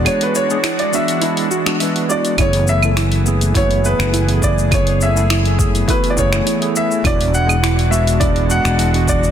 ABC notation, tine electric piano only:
X:1
M:4/4
L:1/16
Q:1/4=103
K:F#m
V:1 name="Tine electric piano"
[G,B,DF]3 [G,B,DG] z2 [G,B,DF]2 [G,B,DE]2 z [G,B,DF] [G,B,DB]2 [G,B,DF]2 | [A,B,EG]3 [A,B,EA] z2 [A,B,EG]2 [A,B,EF]2 [A,B,EG]3 [A,B,EG]3 | [A,B,EG]3 [A,B,EA] z2 [A,B,EG]2 [A,B,EF]2 [A,B,EG]3 [A,B,EG]3 | [G,B,DF]3 [G,B,DG] z2 [G,B,DF]2 [G,B,DE]2 [G,B,DF]3 [G,B,DF]3 |]